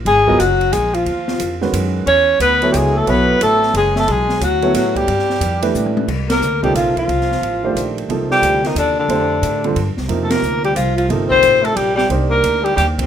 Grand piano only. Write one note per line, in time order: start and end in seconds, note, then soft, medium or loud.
0.27 0.38 F#3 medium
0.27 0.38 B3 medium
0.27 0.39 F4 medium
0.27 0.39 A#4 medium
0.27 0.39 D#5 medium
1.61 2.04 D#3 medium
1.61 2.04 G#3 medium
1.61 2.04 C#4 medium
1.61 2.04 F#4 medium
1.61 2.05 B4 medium
2.62 3.05 F#3 medium
2.62 3.05 B3 medium
2.62 3.05 E4 medium
2.62 3.05 A4 medium
2.62 3.05 C#5 medium
3.08 4.00 F#3 medium
3.08 4.00 B3 medium
3.08 4.01 E4 medium
3.08 4.01 A4 medium
3.08 4.01 C#5 medium
4.62 5.05 F#3 medium
4.62 5.06 B3 medium
4.62 5.06 E4 medium
4.62 5.06 A4 medium
4.62 5.06 C#5 medium
5.63 6.06 E3 medium
5.63 6.06 A3 medium
5.63 6.06 D4 medium
5.63 6.06 G4 medium
5.63 6.06 B4 medium
6.63 7.06 C3 medium
6.63 7.06 F3 medium
6.63 7.06 A#3 soft
6.63 7.06 D#4 medium
6.63 7.06 A4 medium
7.64 8.07 D#3 medium
7.64 8.07 A3 medium
7.64 8.07 D4 soft
7.64 8.07 G4 medium
7.64 8.07 C5 medium
8.09 9.02 C3 medium
8.09 9.02 F3 medium
8.09 9.02 A#3 soft
8.09 9.03 D#4 medium
8.09 9.03 A4 medium
9.09 9.60 D3 medium
9.09 9.60 A3 soft
9.09 9.60 D4 medium
9.09 9.60 G4 medium
9.09 9.60 C5 medium
9.64 9.75 D3 medium
9.64 9.75 G3 medium
9.64 9.75 C4 medium
9.64 9.75 F4 medium
9.64 9.75 A4 medium
10.09 11.02 C3 medium
10.09 11.02 F3 medium
10.09 11.03 A#3 medium
10.09 11.03 D#4 medium
10.09 11.03 A#4 medium
11.09 12.03 C3 medium
11.09 12.03 F3 soft
11.09 12.03 A#3 medium
11.09 12.03 D#4 medium
11.09 12.03 A4 medium
12.10 13.03 A#3 medium
12.10 13.03 D4 medium
12.10 13.03 D#4 medium
12.10 13.04 G4 medium
12.10 13.04 C5 medium